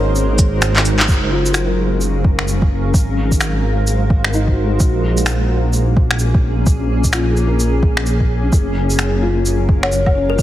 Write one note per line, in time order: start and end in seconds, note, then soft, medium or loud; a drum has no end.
0.00 1.07 G#1 medium
0.00 1.07 G#3 medium
0.00 1.07 D#4 medium
0.00 1.07 F#4 medium
0.00 1.06 A#4 medium
0.00 1.28 A#4 medium
0.00 1.04 C5 medium
0.15 shaker medium
0.38 kick loud
0.38 cabasa medium
0.62 finger snap loud
0.62 shaker medium
0.76 clap medium
0.85 cabasa medium
0.85 shaker soft
0.99 clap loud
1.08 2.93 F#1 medium
1.08 2.93 F#3 medium
1.08 2.93 C#4 medium
1.08 2.93 G#4 medium
1.08 4.77 A#4 medium
1.08 4.77 F5 medium
1.08 kick loud
1.08 shaker medium
1.32 3.00 F4 medium
1.46 shaker medium
1.52 3.13 G#4 medium
1.52 finger snap loud
1.52 shaker medium
1.65 3.28 A#4 soft
2.01 shaker medium
2.24 kick loud
2.39 finger snap medium
2.48 shaker medium
2.62 kick loud
2.94 4.78 G#1 medium
2.94 4.78 G#3 medium
2.94 4.78 D#4 medium
2.94 4.78 F#4 medium
2.94 4.78 C5 medium
2.94 kick loud
2.94 shaker medium
3.32 kick medium
3.32 shaker medium
3.41 finger snap loud
3.41 shaker medium
3.87 shaker medium
4.10 kick loud
4.24 finger snap loud
4.33 5.00 D#4 medium
4.33 shaker medium
4.48 kick medium
4.53 5.16 F#4 medium
4.66 5.27 G#4 soft
4.80 8.50 A#1 medium
4.80 8.49 A#3 medium
4.80 10.34 C#4 medium
4.80 10.34 G#4 medium
4.80 kick loud
4.80 shaker medium
5.17 shaker medium
5.26 finger snap loud
5.26 shaker medium
5.73 shaker medium
5.97 kick loud
6.11 finger snap loud
6.19 shaker medium
6.34 kick loud
6.66 kick loud
6.66 shaker soft
7.04 kick medium
7.04 shaker medium
7.13 8.72 F4 medium
7.13 finger snap loud
7.13 shaker medium
7.33 8.51 G#4 medium
7.33 shaker soft
7.47 9.00 A#4 medium
7.60 shaker soft
7.83 kick loud
7.97 finger snap loud
8.06 shaker medium
8.20 kick medium
8.52 10.37 F#1 medium
8.52 10.36 F#3 medium
8.52 10.21 G#4 soft
8.52 10.36 A#4 medium
8.52 10.42 F5 medium
8.52 kick loud
8.52 shaker soft
8.90 shaker medium
8.99 finger snap loud
8.99 shaker soft
9.22 10.34 F4 medium
9.46 shaker medium
9.69 kick loud
9.83 10.07 C#5 medium
9.83 finger snap loud
9.83 low woodblock medium
9.92 shaker medium
10.06 kick loud
10.06 low woodblock soft
10.15 10.42 C#4 medium
10.30 10.35 A#4 medium
10.35 10.42 G#1 medium
10.35 10.42 F4 medium
10.35 10.42 A#4 medium
10.35 kick loud
10.35 shaker soft